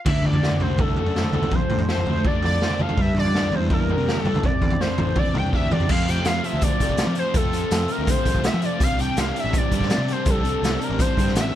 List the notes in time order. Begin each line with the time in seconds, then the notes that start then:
0.06 D2 D3 E5 B6, kick, floor tom, crash
0.23 D2 D5 A6, floor tom
0.33 floor tom
0.43 F#4, snare
0.51 floor tom
0.60 C2 A3 C5 G6, floor tom
0.78 D4 A4 E6, kick, floor tom
0.97 F#4, floor tom
1.06 F#2
1.16 C5, snare
1.24 mid tom
1.32 D2 F#4, floor tom, mid tom
1.41 C2, floor tom, mid tom
1.51 F2 F3 C5 G6, kick, floor tom
1.69 A2, floor tom
1.79 floor tom
1.89 A4 C5 G6, snare
1.98 floor tom
2.06 D2 A3, floor tom
2.25 D4 D5 A6, kick, floor tom
2.42 F2 A4 D5 A6, floor tom
2.62 C5, snare
2.70 mid tom
2.79 A4 F5 C7, floor tom, mid tom
2.89 floor tom, mid tom
2.97 G2 G3 E5 B6, kick, floor tom
3.14 G2, floor tom
3.19 D5 A6
3.25 floor tom
3.35 D4, snare
3.43 floor tom
3.51 E2 G3, floor tom
3.55 C5 G6
3.70 A#3 A#4 F6, kick, floor tom
3.89 D4, floor tom
3.97 C3
4.08 G4, snare
4.17 A4 E6, mid tom
4.24 G2 D4, floor tom, mid tom
4.34 C#2, floor tom, mid tom
4.43 C2 C3 D5 A6, kick, floor tom
4.61 E2, kick, floor tom
4.71 floor tom
4.81 D4 C5 G6, snare
4.98 A1 E3, floor tom, mid tom
5.16 C4 D5 A6, kick, floor tom
5.34 C2 D4 G5 D7, floor tom
5.52 D2 G4 E5 B6, kick
5.71 E2 D4 D5 A6, floor tom, mid tom
5.80 floor tom
5.89 F2 C3 F3 A3 C4 F4 F5 C7, kick, crash
6.08 F2 C3 F3 A3 C4 F4 G5 D7, closed hi-hat
6.25 F2 C3 F3 A3 C4 F4 F5 C7, snare, closed hi-hat
6.43 F2 C3 F3 A3 C4 F4 E5 B6, closed hi-hat
6.53 D2
6.61 F2 C3 F3 A3 C4 F4 D5 A6, kick, closed hi-hat
6.80 C2 F2 C3 F3 A3 C4 F4, kick, closed hi-hat
6.89 kick
6.97 F2 C3 F3 A3 C4 F4, snare, closed hi-hat
7.07 F3
7.15 F2 C3 F3 A3 C4 F4 C5 G6, closed hi-hat
7.34 F2 C3 F3 A3 C4 F4 A4 E6, kick, closed hi-hat
7.53 F2 C3 F3 A3 C4 F4, closed hi-hat
7.71 F2 C3 F3 A3 C4 F4, snare, closed hi-hat
7.88 F2 C3 F3 A3 C4 F4 A#4 F6, closed hi-hat
7.99 D2
8.07 F2 C3 F3 A3 C4 F4 C5 G6, kick, closed hi-hat
8.25 C2 F2 C3 F3 A3 C4 F4, kick, closed hi-hat
8.35 kick
8.43 F2 C3 F3 A3 C4 F4 E5 B6, snare, closed hi-hat
8.54 F3
8.62 F2 C3 F3 A3 C4 F4 D5 A6, closed hi-hat
8.80 C2 C3 G3 C4 D4 F5 C7, kick, closed hi-hat
8.99 C3 G3 C4 D4 G5 D7, closed hi-hat
9.17 C2 C3 G3 C4 D4 F5 C7, snare, closed hi-hat
9.36 C3 G3 C4 D4 E5 B6, closed hi-hat
9.44 A1
9.53 C3 G3 C4 D4, kick, closed hi-hat
9.58 D5 A6
9.71 G2 C3 G3 C4 D4, kick, closed hi-hat
9.81 kick, snare
9.90 C3 G3 C4 D4, snare, closed hi-hat
9.98 C3
10.08 C3 G3 C4 D4, snare, closed hi-hat
10.12 C5 G6
10.25 C2 C3 G3 C4 D4, kick, closed hi-hat
10.30 A4 E6
10.43 C3 G3 C4 D4, closed hi-hat
10.62 C2 C3 G3 C4 D4, snare, closed hi-hat
10.80 C3 G3 C4 D4 A#4 F6, closed hi-hat
10.90 A1
10.98 C3 G3 C4 D4 C5 G6, kick, closed hi-hat
11.17 G2 C3 G3 C4 D4, kick, closed hi-hat
11.28 snare
11.34 A1 C3 G3 C4 D4, snare, closed hi-hat
11.40 E5 B6